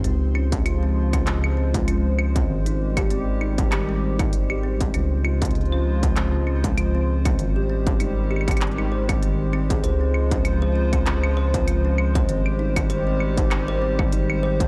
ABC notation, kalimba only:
X:1
M:4/4
L:1/16
Q:"Swing 16ths" 1/4=98
K:Dblyd
V:1 name="Kalimba"
C z D z F C z D z F C z D z F C | z E z G C z E z G C z E z G C z | D z F C z D z F C z D z F C z D | z G C z E z G C z E c C C z C A |
c C z D z c C z D z c C z D z c | C z E z c C z E z c C z E z c C |]